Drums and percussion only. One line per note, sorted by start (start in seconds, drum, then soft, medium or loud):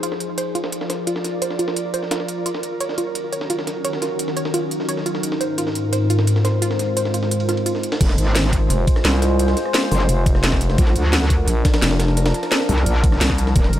0.03 closed hi-hat medium
0.03 ride medium
0.12 snare soft
0.20 closed hi-hat medium
0.20 ride medium
0.38 closed hi-hat medium
0.38 ride medium
0.55 closed hi-hat medium
0.55 ride medium
0.64 snare medium
0.72 closed hi-hat medium
0.72 ride medium
0.81 snare medium
0.90 snare medium
0.90 closed hi-hat medium
0.90 ride medium
1.07 closed hi-hat medium
1.07 ride medium
1.16 snare medium
1.24 snare soft
1.24 closed hi-hat medium
1.24 ride medium
1.42 closed hi-hat medium
1.42 ride medium
1.50 snare soft
1.59 closed hi-hat medium
1.59 ride medium
1.68 snare medium
1.76 closed hi-hat medium
1.76 ride medium
1.94 closed hi-hat medium
1.94 ride medium
2.03 snare soft
2.11 snare loud
2.11 closed hi-hat medium
2.11 ride medium
2.20 snare soft
2.28 closed hi-hat medium
2.28 ride medium
2.46 closed hi-hat medium
2.46 ride medium
2.55 snare medium
2.63 closed hi-hat medium
2.63 ride medium
2.80 closed hi-hat medium
2.80 ride medium
2.89 snare soft
2.98 closed hi-hat medium
2.98 ride medium
3.15 closed hi-hat medium
3.15 ride medium
3.33 closed hi-hat medium
3.33 ride medium
3.41 snare medium
3.50 closed hi-hat medium
3.50 ride medium
3.59 snare medium
3.67 snare soft
3.67 closed hi-hat medium
3.67 ride medium
3.85 closed hi-hat medium
3.85 ride medium
3.93 snare medium
4.02 snare soft
4.02 closed hi-hat medium
4.02 ride medium
4.19 closed hi-hat medium
4.19 ride medium
4.28 snare soft
4.37 closed hi-hat medium
4.37 ride medium
4.45 snare medium
4.54 closed hi-hat medium
4.54 ride medium
4.71 closed hi-hat medium
4.71 ride medium
4.80 snare soft
4.89 closed hi-hat medium
4.89 ride medium
4.97 snare soft
5.06 closed hi-hat medium
5.06 ride medium
5.15 snare medium
5.23 closed hi-hat medium
5.23 ride medium
5.32 snare medium
5.41 closed hi-hat medium
5.41 ride medium
5.58 closed hi-hat medium
5.58 ride medium
5.67 snare soft
5.75 closed hi-hat medium
5.75 ride medium
5.93 closed hi-hat medium
5.93 ride medium
6.10 closed hi-hat medium
6.10 ride medium
6.19 snare medium
6.27 closed hi-hat medium
6.27 ride medium
6.36 snare medium
6.45 snare medium
6.45 closed hi-hat medium
6.45 ride medium
6.62 closed hi-hat medium
6.62 ride medium
6.71 snare medium
6.79 snare soft
6.79 closed hi-hat medium
6.79 ride medium
6.97 closed hi-hat medium
6.97 ride medium
7.05 snare soft
7.14 closed hi-hat medium
7.14 ride medium
7.23 snare soft
7.31 closed hi-hat medium
7.31 ride medium
7.40 ride medium
7.49 snare soft
7.49 closed hi-hat medium
7.57 ride medium
7.66 closed hi-hat medium
7.66 ride medium
7.75 snare soft
7.83 closed hi-hat medium
7.83 ride medium
7.92 snare loud
7.92 ride medium
8.01 kick loud
8.01 closed hi-hat loud
8.01 ride medium
8.01 crash loud
8.09 snare medium
8.18 closed hi-hat medium
8.18 ride medium
8.27 cross-stick soft
8.35 snare loud
8.35 closed hi-hat loud
8.35 ride medium
8.44 snare soft
8.53 kick medium
8.53 closed hi-hat medium
8.53 ride medium
8.70 closed hi-hat loud
8.70 ride medium
8.87 kick loud
8.87 closed hi-hat medium
8.87 ride medium
8.96 cross-stick soft
8.96 snare medium
9.05 snare loud
9.05 closed hi-hat loud
9.05 ride medium
9.13 snare medium
9.22 snare medium
9.22 closed hi-hat medium
9.22 ride medium
9.39 closed hi-hat loud
9.39 ride medium
9.48 snare medium
9.57 snare soft
9.57 closed hi-hat medium
9.57 ride medium
9.65 cross-stick soft
9.74 snare loud
9.74 closed hi-hat medium
9.74 ride medium
9.83 snare medium
9.91 open hi-hat medium
9.91 ride medium
10.00 snare medium
10.09 closed hi-hat loud
10.09 ride medium
10.26 kick loud
10.26 closed hi-hat medium
10.26 ride medium
10.35 cross-stick soft
10.35 snare soft
10.44 snare loud
10.44 closed hi-hat medium
10.44 ride medium
10.52 kick medium
10.52 cross-stick soft
10.52 snare soft
10.61 closed hi-hat medium
10.61 ride medium
10.70 snare medium
10.78 kick loud
10.78 closed hi-hat medium
10.78 ride medium
10.87 snare medium
10.96 closed hi-hat medium
10.96 ride medium
11.04 cross-stick soft
11.13 snare loud
11.13 closed hi-hat medium
11.13 ride medium
11.22 snare soft
11.30 kick medium
11.30 closed hi-hat medium
11.30 ride medium
11.48 closed hi-hat medium
11.48 ride medium
11.65 kick loud
11.65 snare loud
11.65 closed hi-hat medium
11.65 ride medium
11.74 cross-stick soft
11.74 snare loud
11.74 ride medium
11.82 snare loud
11.82 closed hi-hat medium
11.82 ride medium
11.91 snare medium
12.00 snare loud
12.00 closed hi-hat medium
12.00 ride medium
12.08 snare medium
12.17 snare soft
12.17 closed hi-hat medium
12.17 ride medium
12.26 snare loud
12.26 ride medium
12.34 snare medium
12.34 closed hi-hat medium
12.43 cross-stick soft
12.43 snare soft
12.43 ride medium
12.52 snare loud
12.52 closed hi-hat medium
12.52 ride medium
12.60 snare medium
12.69 open hi-hat medium
12.69 ride medium
12.78 snare medium
12.86 closed hi-hat medium
12.86 ride medium
13.04 kick loud
13.04 closed hi-hat medium
13.04 ride medium
13.12 cross-stick soft
13.12 snare soft
13.21 snare loud
13.21 closed hi-hat medium
13.21 ride medium
13.30 kick medium
13.30 cross-stick soft
13.30 snare soft
13.38 closed hi-hat medium
13.38 ride medium
13.47 snare medium
13.56 kick loud
13.56 closed hi-hat medium
13.56 ride medium
13.64 snare medium
13.73 closed hi-hat medium
13.73 ride medium